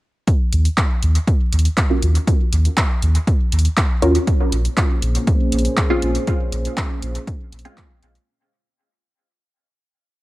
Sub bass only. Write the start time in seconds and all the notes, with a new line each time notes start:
0.53 D#2
1.03 D#2
1.52 D#2
2.02 D#2
2.52 D#2
3.02 D#2
3.52 D#2
4.02 D#2
4.52 A#1
5.02 A#1
5.52 A#1
6.02 A#1
6.52 A#1
7.02 A#1
7.52 A#1
8.02 A#1